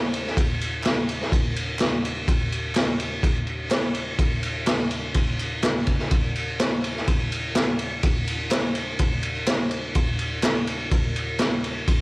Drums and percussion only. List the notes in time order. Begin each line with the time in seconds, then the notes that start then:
0.14 ride
0.27 snare
0.37 kick, ride
0.61 ride
0.83 snare, clap, ride
1.09 ride
1.21 snare
1.32 kick, ride
1.56 ride
1.79 snare, clap, ride
2.05 ride
2.28 kick, ride
2.52 ride
2.75 snare, clap, ride
3.00 ride
3.23 kick, ride
3.47 ride
3.71 snare, clap, ride
3.95 ride
4.19 kick, ride
4.43 ride
4.67 snare, clap, ride
4.91 ride
5.14 kick, ride
5.39 ride
5.63 snare, clap, ride
5.87 kick, ride
5.99 snare
6.11 kick, ride
6.35 ride
6.59 snare, clap, ride
6.84 ride
6.96 snare
7.07 kick, ride
7.32 ride
7.55 snare, clap, ride
7.79 ride
8.03 kick, ride
8.28 ride
8.51 snare, clap, ride
8.75 ride
8.99 kick, ride
9.23 ride
9.47 snare, clap, ride
9.71 ride
9.95 kick, ride
10.19 ride
10.43 snare, clap, ride
10.67 ride
10.91 kick, ride
11.16 ride
11.39 snare, clap, ride
11.64 ride
11.88 kick, ride